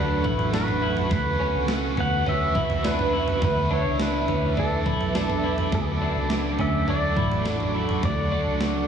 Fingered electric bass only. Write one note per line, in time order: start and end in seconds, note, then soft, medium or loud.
0.00 0.22 D2 medium
0.24 1.07 A1 medium
1.11 1.52 D2 medium
1.54 1.95 C#2 medium
1.97 2.52 D2 medium
2.55 3.38 C#2 medium
3.42 3.83 D2 medium
3.85 4.26 C#2 medium
4.28 4.87 D2 medium
4.86 5.68 B1 medium
5.72 6.14 D2 medium
6.16 6.57 C#2 medium
6.59 7.18 D2 medium
7.16 7.99 A1 medium
8.03 8.44 D2 medium
8.47 8.87 C#2 medium